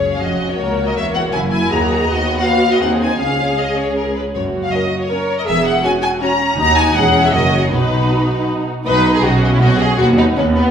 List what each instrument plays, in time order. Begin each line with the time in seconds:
Already playing: double bass section F#1, cello section F#2, violin section C#4 G#4 C#5
0.14 violin section F5
0.22 double bass section F1, cello section F2, viola section F#4, violin section F#4 D#5
0.50 violin section C#5
0.59 cello section C#2, double bass section C#2, violin section A#3 F#4, viola section A#4
0.88 violin section D#5
0.96 double bass section E1, cello section E2, viola section C#5, violin section E5
1.14 violin section F#5
1.32 double bass section F#1, cello section F#2, viola section E4, violin section E4 G#5
1.51 violin section G#5
1.70 double bass section D#2, cello section D#2, violin section A#3 F#4 A#5, viola section G#4
2.07 double bass section D#2, cello section D#2, violin section B3 F#4 D#5, viola section F#4
2.36 violin section F#5
2.44 violin section F5
2.73 violin section D#5
2.81 cello section D#2, double bass section D#2, violin section C4 G#4 F#5, viola section D#4
3.01 violin section G#5
3.19 double bass section C#2, cello section C#2, violin section C#4 G#4 F5, viola section G#4
3.59 violin section D#5
3.78 violin section C#5
3.96 violin section A#4
4.15 violin section B4
4.34 double bass section F#1, cello section F#2, viola section F#4, violin section C#5
4.63 violin section F5
4.71 violin section C#4 A#4 D#5
5.00 violin section C#5
5.10 violin section C#4 A#4, viola section A#4
5.38 violin section D#5
5.46 double bass section E1, cello section E2, viola section G#4, violin section E5
5.66 violin section F#5
5.83 violin section C#4 F#4 G#5, viola section F#4
6.02 violin section G#5
6.20 viola section C#4, violin section C#4 F#4 A#5
6.57 double bass section D#2, cello section D#2, viola section D#4, violin section D#4 F#4 A#5
6.77 violin section G#5
6.95 double bass section E1, cello section E2, violin section C#4 G#4 F#5, viola section G#4
7.24 violin section E5
7.33 double bass section F#1, cello section F#2, violin section C#4 A#4 D#5, viola section F#4
7.54 violin section G#4
7.63 violin section C#5
7.71 double bass section B1, cello section B2, viola section D#4, violin section D#4 F#4 B4
8.86 double bass section B1, cello section B2, viola section D#4, violin section B4 D#5
9.06 violin section D#5
9.15 violin section G#4
9.24 double bass section B1, cello section B2, viola section C#4, violin section F#4 D#5
9.44 violin section D#5
9.54 violin section E4
9.62 double bass section B1, cello section B2, violin section F#4 D#5
9.79 violin section G#4 D#5
9.99 double bass section D#2, cello section D#2, viola section B3, violin section F#4 B4
10.18 violin section D#4 B4
10.36 double bass section D#2, cello section D#2, violin section C#4 B4
10.55 violin section B3 B4